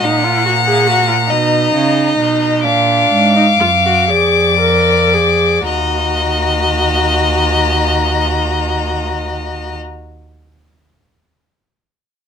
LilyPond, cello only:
\new Staff \with { instrumentName = "Cello" } { \clef bass \time 12/8 \key ees \minor \tempo 4. = 36 bes,4. ces8 des8 ces8 bes,8 aes,8 ges,8 f,4. | ees,1. | }